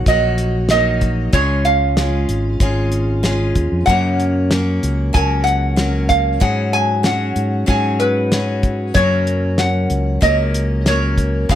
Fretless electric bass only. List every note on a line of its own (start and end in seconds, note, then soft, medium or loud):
0.07 1.29 A#1 medium
1.33 2.24 C#2 medium
2.29 2.59 G#1 medium
2.61 3.52 G#1 medium
3.56 3.70 D#2 medium
3.72 3.86 F2 medium
3.87 4.78 F#2 medium
4.83 5.13 C#2 medium
5.15 6.37 C#2 medium
6.42 7.32 G#2 medium
7.36 7.66 G#2 medium
7.68 8.91 G#2 medium
8.95 9.86 F#2 medium
9.90 10.20 C#2 medium
10.22 11.45 C#2 medium
11.49 11.55 C#2 medium